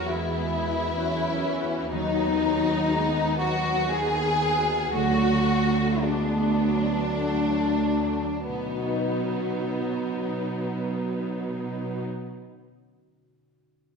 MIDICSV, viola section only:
0, 0, Header, 1, 2, 480
1, 0, Start_track
1, 0, Key_signature, 5, "major"
1, 0, Tempo, 924499
1, 996, Time_signature, 3, 2, 24, 8
1, 996, Tempo, 970874
1, 1476, Tempo, 1015228
1, 2436, Tempo, 1094891
1, 2916, Tempo, 1181102
1, 3396, Tempo, 1271186
1, 3876, Tempo, 1234568
1, 6012, End_track
2, 0, Start_track
2, 0, Title_t, "Viola section"
2, 0, Program_c, 0, 48
2, 34, Note_on_c, 0, 59, 36
2, 37, Note_on_c, 0, 56, 39
2, 271, Note_off_c, 0, 56, 0
2, 277, Note_on_c, 0, 56, 39
2, 511, Note_off_c, 0, 56, 0
2, 516, Note_off_c, 0, 59, 0
2, 517, Note_on_c, 0, 54, 42
2, 517, Note_on_c, 0, 61, 42
2, 753, Note_on_c, 0, 52, 47
2, 754, Note_off_c, 0, 54, 0
2, 995, Note_off_c, 0, 52, 0
2, 996, Note_off_c, 0, 61, 0
2, 996, Note_on_c, 0, 59, 46
2, 997, Note_on_c, 0, 54, 46
2, 1233, Note_off_c, 0, 54, 0
2, 1239, Note_on_c, 0, 54, 50
2, 1474, Note_off_c, 0, 54, 0
2, 1481, Note_on_c, 0, 56, 45
2, 1714, Note_off_c, 0, 56, 0
2, 1716, Note_on_c, 0, 54, 51
2, 1931, Note_off_c, 0, 59, 0
2, 1951, Note_off_c, 0, 54, 0
2, 1956, Note_on_c, 0, 59, 51
2, 1958, Note_on_c, 0, 51, 53
2, 2189, Note_off_c, 0, 51, 0
2, 2195, Note_on_c, 0, 51, 46
2, 2430, Note_off_c, 0, 59, 0
2, 2439, Note_off_c, 0, 51, 0
2, 2445, Note_on_c, 0, 54, 46
2, 2445, Note_on_c, 0, 57, 43
2, 2912, Note_off_c, 0, 54, 0
2, 2921, Note_off_c, 0, 57, 0
2, 2922, Note_on_c, 0, 56, 43
2, 2922, Note_on_c, 0, 59, 44
2, 3155, Note_off_c, 0, 56, 0
2, 3155, Note_on_c, 0, 54, 40
2, 3393, Note_off_c, 0, 54, 0
2, 3399, Note_off_c, 0, 59, 0
2, 3400, Note_on_c, 0, 57, 43
2, 3403, Note_on_c, 0, 54, 39
2, 3774, Note_off_c, 0, 57, 0
2, 3775, Note_off_c, 0, 54, 0
2, 3879, Note_on_c, 0, 54, 35
2, 3881, Note_on_c, 0, 63, 34
2, 5260, Note_off_c, 0, 54, 0
2, 5262, Note_off_c, 0, 63, 0
2, 6012, End_track
0, 0, End_of_file